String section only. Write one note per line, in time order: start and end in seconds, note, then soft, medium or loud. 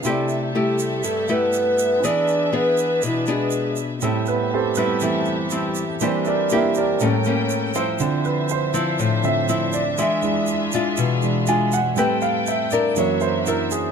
0.05 2.01 A3 medium
0.05 2.01 G4 medium
0.05 2.01 A4 medium
0.05 3.98 E5 medium
2.04 4.00 D4 medium
2.04 4.00 G#4 medium
2.04 4.00 B4 medium
4.02 5.99 C4 medium
4.02 6.97 G4 medium
4.02 5.99 A4 medium
4.02 5.99 E5 medium
6.01 6.99 D4 medium
6.01 7.98 A#4 medium
6.01 6.99 E5 medium
7.00 7.98 C#4 medium
7.00 7.99 A4 medium
7.00 7.98 G5 medium
8.01 11.94 D4 medium
8.01 9.97 C5 medium
8.01 11.94 E5 medium
9.99 11.96 F4 medium
9.99 11.95 G#4 medium
11.96 12.95 C4 medium
11.96 12.95 A4 medium
11.96 12.95 B4 medium
11.96 12.95 G5 medium
12.98 13.92 D4 medium
12.98 13.92 F#4 medium
12.98 13.92 A#4 medium
12.98 13.92 E5 medium